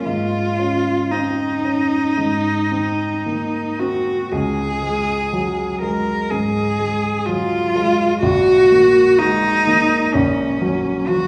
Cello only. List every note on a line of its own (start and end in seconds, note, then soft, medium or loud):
0.05 1.13 F4 medium
1.12 3.81 D#4 medium
3.80 4.34 F#4 soft
4.32 5.81 G#4 medium
5.82 6.32 A#4 medium
6.31 7.28 G#4 medium
7.26 8.21 F4 medium
8.22 9.20 F#4 medium
9.18 10.15 D#4 medium
10.14 11.09 C#4 medium
11.08 11.27 F#4 medium